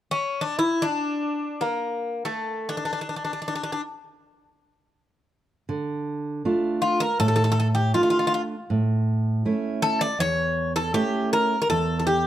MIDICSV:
0, 0, Header, 1, 3, 480
1, 0, Start_track
1, 0, Key_signature, -1, "minor"
1, 0, Tempo, 752823
1, 1697, Time_signature, 4, 2, 24, 8
1, 7823, End_track
2, 0, Start_track
2, 0, Title_t, "Bouzouki"
2, 0, Program_c, 0, 25
2, 72, Note_on_c, 0, 61, 76
2, 263, Note_on_c, 0, 62, 69
2, 274, Note_off_c, 0, 61, 0
2, 372, Note_off_c, 0, 62, 0
2, 374, Note_on_c, 0, 64, 81
2, 523, Note_on_c, 0, 62, 84
2, 539, Note_off_c, 0, 64, 0
2, 1026, Note_on_c, 0, 58, 63
2, 1048, Note_off_c, 0, 62, 0
2, 1432, Note_off_c, 0, 58, 0
2, 1435, Note_on_c, 0, 57, 62
2, 1715, Note_on_c, 0, 62, 70
2, 1728, Note_off_c, 0, 57, 0
2, 1760, Note_off_c, 0, 62, 0
2, 1767, Note_on_c, 0, 62, 46
2, 1811, Note_off_c, 0, 62, 0
2, 1818, Note_on_c, 0, 62, 49
2, 1859, Note_off_c, 0, 62, 0
2, 1867, Note_on_c, 0, 62, 44
2, 1913, Note_off_c, 0, 62, 0
2, 1921, Note_on_c, 0, 62, 46
2, 1963, Note_off_c, 0, 62, 0
2, 1971, Note_on_c, 0, 62, 38
2, 2009, Note_off_c, 0, 62, 0
2, 2017, Note_on_c, 0, 62, 44
2, 2062, Note_off_c, 0, 62, 0
2, 2069, Note_on_c, 0, 62, 44
2, 2116, Note_off_c, 0, 62, 0
2, 2124, Note_on_c, 0, 62, 42
2, 2172, Note_off_c, 0, 62, 0
2, 2179, Note_on_c, 0, 62, 41
2, 2210, Note_off_c, 0, 62, 0
2, 2218, Note_on_c, 0, 62, 55
2, 2259, Note_off_c, 0, 62, 0
2, 2267, Note_on_c, 0, 62, 48
2, 2310, Note_off_c, 0, 62, 0
2, 2317, Note_on_c, 0, 62, 53
2, 2367, Note_off_c, 0, 62, 0
2, 2374, Note_on_c, 0, 62, 48
2, 2426, Note_off_c, 0, 62, 0
2, 4347, Note_on_c, 0, 65, 71
2, 4456, Note_off_c, 0, 65, 0
2, 4465, Note_on_c, 0, 70, 85
2, 4575, Note_off_c, 0, 70, 0
2, 4589, Note_on_c, 0, 69, 86
2, 4635, Note_off_c, 0, 69, 0
2, 4643, Note_on_c, 0, 69, 64
2, 4683, Note_off_c, 0, 69, 0
2, 4691, Note_on_c, 0, 69, 78
2, 4736, Note_off_c, 0, 69, 0
2, 4744, Note_on_c, 0, 69, 64
2, 4785, Note_off_c, 0, 69, 0
2, 4792, Note_on_c, 0, 69, 76
2, 4836, Note_off_c, 0, 69, 0
2, 4843, Note_on_c, 0, 69, 58
2, 4890, Note_off_c, 0, 69, 0
2, 4939, Note_on_c, 0, 67, 65
2, 5061, Note_off_c, 0, 67, 0
2, 5064, Note_on_c, 0, 65, 66
2, 5109, Note_off_c, 0, 65, 0
2, 5120, Note_on_c, 0, 65, 43
2, 5158, Note_off_c, 0, 65, 0
2, 5166, Note_on_c, 0, 65, 58
2, 5211, Note_off_c, 0, 65, 0
2, 5223, Note_on_c, 0, 65, 46
2, 5265, Note_off_c, 0, 65, 0
2, 5273, Note_on_c, 0, 65, 59
2, 5310, Note_off_c, 0, 65, 0
2, 5318, Note_on_c, 0, 65, 53
2, 5362, Note_off_c, 0, 65, 0
2, 6264, Note_on_c, 0, 69, 86
2, 6382, Note_on_c, 0, 74, 99
2, 6384, Note_off_c, 0, 69, 0
2, 6491, Note_off_c, 0, 74, 0
2, 6505, Note_on_c, 0, 73, 102
2, 6835, Note_off_c, 0, 73, 0
2, 6860, Note_on_c, 0, 69, 81
2, 6969, Note_off_c, 0, 69, 0
2, 6976, Note_on_c, 0, 67, 77
2, 7198, Note_off_c, 0, 67, 0
2, 7224, Note_on_c, 0, 70, 84
2, 7399, Note_off_c, 0, 70, 0
2, 7407, Note_on_c, 0, 70, 68
2, 7454, Note_off_c, 0, 70, 0
2, 7458, Note_on_c, 0, 69, 82
2, 7635, Note_off_c, 0, 69, 0
2, 7648, Note_on_c, 0, 69, 52
2, 7691, Note_off_c, 0, 69, 0
2, 7694, Note_on_c, 0, 67, 71
2, 7823, Note_off_c, 0, 67, 0
2, 7823, End_track
3, 0, Start_track
3, 0, Title_t, "Steel-string acoustic guitar"
3, 0, Program_c, 1, 25
3, 3626, Note_on_c, 1, 50, 64
3, 4090, Note_off_c, 1, 50, 0
3, 4113, Note_on_c, 1, 62, 41
3, 4114, Note_on_c, 1, 57, 47
3, 4118, Note_on_c, 1, 65, 47
3, 4492, Note_off_c, 1, 62, 0
3, 4493, Note_off_c, 1, 57, 0
3, 4495, Note_off_c, 1, 65, 0
3, 4587, Note_on_c, 1, 45, 66
3, 5049, Note_off_c, 1, 45, 0
3, 5064, Note_on_c, 1, 57, 42
3, 5068, Note_on_c, 1, 62, 36
3, 5071, Note_on_c, 1, 65, 47
3, 5446, Note_off_c, 1, 57, 0
3, 5448, Note_off_c, 1, 62, 0
3, 5450, Note_off_c, 1, 65, 0
3, 5547, Note_on_c, 1, 45, 63
3, 6008, Note_off_c, 1, 45, 0
3, 6028, Note_on_c, 1, 57, 45
3, 6030, Note_on_c, 1, 61, 38
3, 6031, Note_on_c, 1, 64, 47
3, 6407, Note_off_c, 1, 57, 0
3, 6408, Note_off_c, 1, 61, 0
3, 6409, Note_off_c, 1, 64, 0
3, 6495, Note_on_c, 1, 40, 68
3, 6960, Note_off_c, 1, 40, 0
3, 6973, Note_on_c, 1, 57, 46
3, 6978, Note_on_c, 1, 64, 47
3, 6979, Note_on_c, 1, 61, 42
3, 7357, Note_off_c, 1, 57, 0
3, 7359, Note_off_c, 1, 64, 0
3, 7360, Note_off_c, 1, 61, 0
3, 7457, Note_on_c, 1, 40, 65
3, 7823, Note_off_c, 1, 40, 0
3, 7823, End_track
0, 0, End_of_file